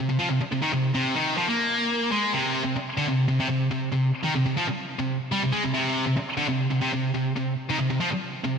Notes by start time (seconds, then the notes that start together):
0.09 C3
0.19 F3
0.30 C3
0.41 muted distorted electric guitar stroke
0.52 C3
0.62 D#3
0.73 C3
0.95 C3
1.16 D#3
1.37 F3
1.48 A#3
2.12 G#3
2.33 C3
2.64 C3
2.76 muted distorted electric guitar stroke
2.97 D3
3.08 C3
3.28 C3
3.40 C3
3.49 C3
3.71 C3
3.93 C3
4.24 D#3
4.36 C3
4.46 C3
4.57 F3
4.68 muted distorted electric guitar stroke
4.99 C3
5.32 G3
5.42 C3
5.52 G#3
5.63 C3
5.74 C3
6.06 C3
6.17 muted distorted electric guitar stroke
6.37 D3
6.49 C3
6.71 C3
6.82 C3
6.93 C3
7.15 C3
7.36 C3
7.69 D#3
7.79 C3
7.90 C3
8.00 F3
8.12 muted distorted electric guitar stroke
8.45 C3